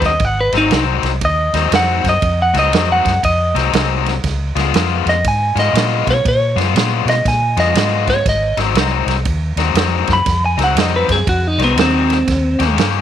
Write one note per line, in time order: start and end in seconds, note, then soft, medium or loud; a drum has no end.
0.00 0.17 D#2 medium
0.00 kick medium
0.00 snare soft
0.00 ride medium
0.06 0.25 D#5 medium
0.20 0.49 G#1 medium
0.20 kick loud
0.20 ride medium
0.25 0.39 F#5 medium
0.41 0.55 B4 medium
0.52 0.69 G#1 medium
0.52 0.70 G#2 medium
0.52 0.70 F#3 medium
0.52 0.71 C4 medium
0.52 0.71 D#4 medium
0.52 snare soft
0.52 ride medium
0.57 0.83 D#4 medium
0.71 1.00 C2 medium
0.71 1.09 G#2 medium
0.71 1.09 F#3 medium
0.71 1.09 C4 medium
0.71 1.09 D#4 medium
0.71 snare loud
0.71 ride medium
1.02 1.19 C2 medium
1.02 snare soft
1.02 ride medium
1.21 1.50 D#2 medium
1.21 1.72 D#5 medium
1.21 kick medium
1.21 ride medium
1.53 1.70 D#2 medium
1.53 1.70 G#2 medium
1.53 1.71 F#3 medium
1.53 1.71 C4 medium
1.53 1.72 D#4 medium
1.53 snare soft
1.53 ride medium
1.71 2.01 F2 medium
1.71 2.09 G#2 medium
1.71 2.10 F#3 medium
1.71 2.10 C4 medium
1.71 2.10 D#4 medium
1.71 2.06 F#5 medium
1.71 snare loud
1.71 ride medium
2.04 2.21 F#2 medium
2.04 kick medium
2.04 snare soft
2.04 ride medium
2.09 2.40 D#5 medium
2.22 2.51 F2 medium
2.22 kick loud
2.22 ride medium
2.42 2.57 F#5 medium
2.54 2.71 C#2 medium
2.54 2.70 G#2 medium
2.54 2.71 F#3 medium
2.54 2.71 C4 medium
2.54 2.72 D#4 loud
2.54 snare soft
2.54 ride medium
2.59 2.90 D#5 medium
2.72 3.02 F2 medium
2.72 3.10 G#2 medium
2.72 3.10 F#3 medium
2.72 3.10 C4 medium
2.72 3.10 D#4 medium
2.72 snare loud
2.72 ride medium
2.92 3.24 F#5 medium
3.05 3.21 F#2 medium
3.05 kick medium
3.05 snare soft
3.05 ride medium
3.23 3.52 F2 medium
3.23 3.55 D#5 medium
3.23 kick medium
3.23 ride medium
3.54 3.71 C2 medium
3.54 3.71 G#2 medium
3.54 3.72 F#3 medium
3.54 3.72 C4 medium
3.54 3.72 D#4 medium
3.54 snare soft
3.54 ride medium
3.72 4.20 C2 medium
3.72 4.10 G#2 medium
3.72 4.11 F#3 medium
3.72 4.11 C4 medium
3.72 4.11 D#4 medium
3.72 snare loud
3.72 ride medium
4.06 snare soft
4.06 ride medium
4.24 4.53 C#2 medium
4.24 kick medium
4.24 snare soft
4.24 ride medium
4.55 4.72 C#2 medium
4.55 4.73 C#3 medium
4.55 4.73 G#3 medium
4.55 4.74 B3 medium
4.55 4.74 F4 medium
4.55 snare soft
4.55 ride medium
4.74 5.03 F2 medium
4.74 5.12 C#3 medium
4.74 5.12 G#3 medium
4.74 5.12 B3 medium
4.74 5.12 F4 medium
4.74 snare loud
4.74 ride medium
5.06 5.23 F2 medium
5.06 5.26 D#5 medium
5.06 snare soft
5.06 ride medium
5.24 5.53 G#2 medium
5.24 5.57 G#5 medium
5.24 kick loud
5.24 ride medium
5.56 5.72 G#2 medium
5.56 5.73 C#3 medium
5.56 5.73 G#3 medium
5.56 5.74 B3 medium
5.56 5.74 F4 medium
5.56 6.07 D#5 medium
5.56 snare soft
5.56 ride medium
5.73 6.03 A#2 medium
5.73 6.12 C#3 medium
5.73 6.12 G#3 medium
5.73 6.12 B3 medium
5.73 6.12 F4 medium
5.73 snare loud
5.73 ride medium
6.07 6.23 B2 medium
6.07 6.26 C#5 medium
6.07 kick medium
6.07 snare soft
6.07 ride medium
6.25 6.54 A#2 medium
6.25 6.58 C#5 medium
6.25 kick loud
6.25 ride medium
6.56 6.73 F#2 medium
6.56 6.73 C#3 medium
6.56 6.74 G#3 medium
6.56 6.74 B3 medium
6.56 6.75 F4 loud
6.56 ride medium
6.60 snare soft
6.74 7.04 A#2 medium
6.74 7.12 C#3 medium
6.74 7.13 G#3 medium
6.74 7.13 B3 medium
6.74 7.13 F4 medium
6.74 snare loud
6.74 ride medium
7.05 7.23 B2 medium
7.05 ride medium
7.09 7.26 D#5 medium
7.09 snare soft
7.25 7.54 A#2 medium
7.25 7.58 G#5 medium
7.25 kick medium
7.25 snare soft
7.25 ride medium
7.57 7.73 F2 medium
7.57 7.73 C#3 medium
7.57 7.74 G#3 medium
7.57 7.74 B3 medium
7.57 7.74 F4 medium
7.57 8.07 D#5 medium
7.57 snare soft
7.57 ride medium
7.74 8.21 G#2 medium
7.74 8.12 C#3 medium
7.74 8.13 G#3 medium
7.74 8.13 B3 medium
7.74 8.13 F4 medium
7.74 snare loud
7.74 ride medium
8.07 8.27 C#5 medium
8.07 kick medium
8.07 snare soft
8.07 ride medium
8.25 8.55 G#1 medium
8.25 8.59 D#5 medium
8.25 kick loud
8.25 snare soft
8.25 ride medium
8.57 8.74 G#1 medium
8.57 8.75 G#2 medium
8.57 8.76 F#3 medium
8.57 8.76 C4 medium
8.57 8.76 D#4 medium
8.57 snare soft
8.57 ride medium
8.74 9.04 C2 medium
8.74 9.14 G#2 medium
8.74 9.14 F#3 medium
8.74 9.14 C4 medium
8.74 9.14 D#4 medium
8.74 snare loud
8.74 ride medium
9.06 9.24 C2 medium
9.06 snare soft
9.06 ride medium
9.25 9.55 D#2 medium
9.25 kick loud
9.25 ride medium
9.56 9.74 D#2 medium
9.56 9.74 G#2 medium
9.56 9.75 F#3 medium
9.56 9.75 C4 medium
9.56 9.75 D#4 loud
9.56 snare soft
9.56 ride medium
9.74 10.04 F2 medium
9.74 10.14 G#2 medium
9.74 10.14 F#3 medium
9.74 10.14 C4 medium
9.74 10.14 D#4 medium
9.74 snare loud
9.74 ride medium
10.07 10.24 F#2 medium
10.07 kick medium
10.07 snare soft
10.07 ride medium
10.13 10.44 B5 medium
10.26 10.55 F2 medium
10.26 kick loud
10.26 snare soft
10.26 ride medium
10.46 10.61 G#5 medium
10.57 10.75 C#2 medium
10.57 10.75 G#2 medium
10.57 10.76 F#3 medium
10.57 10.76 C4 loud
10.57 10.76 D#4 loud
10.57 snare soft
10.57 ride medium
10.64 10.80 F#5 medium
10.75 11.05 F2 medium
10.75 11.14 G#2 medium
10.75 11.14 F#3 medium
10.75 11.15 C4 medium
10.75 11.15 D#4 medium
10.75 snare loud
10.75 ride medium
10.80 10.95 D#5 medium
10.96 11.11 B4 medium
11.08 11.25 F#2 medium
11.08 11.27 G#4 medium
11.08 kick medium
11.08 snare soft
11.08 ride medium
11.27 11.56 F2 medium
11.27 11.47 F#4 medium
11.27 kick loud
11.27 ride medium
11.47 11.62 D#4 medium
11.58 11.75 C2 medium
11.58 11.76 G#2 medium
11.58 11.77 F#3 medium
11.58 11.77 C4 medium
11.58 11.77 D#4 medium
11.58 snare soft
11.58 ride medium
11.64 11.79 B3 medium
11.76 12.23 D#2 medium
11.76 12.15 G#2 medium
11.76 12.15 F#3 medium
11.76 12.15 C4 medium
11.76 12.16 D#4 medium
11.76 snare loud
11.76 ride medium
11.81 12.77 C4 medium
12.10 snare soft
12.10 ride medium
12.27 12.56 D#2 medium
12.27 kick medium
12.27 snare soft
12.27 ride medium
12.59 12.76 D#2 medium
12.59 12.77 D#3 medium
12.59 12.78 A#3 medium
12.59 12.78 C#4 medium
12.59 12.78 G4 loud
12.59 snare soft
12.59 ride medium
12.78 13.01 G2 medium
12.78 13.01 D#3 medium
12.78 13.01 A#3 medium
12.78 13.01 C#4 medium
12.78 13.01 G4 medium
12.78 snare loud
12.78 ride medium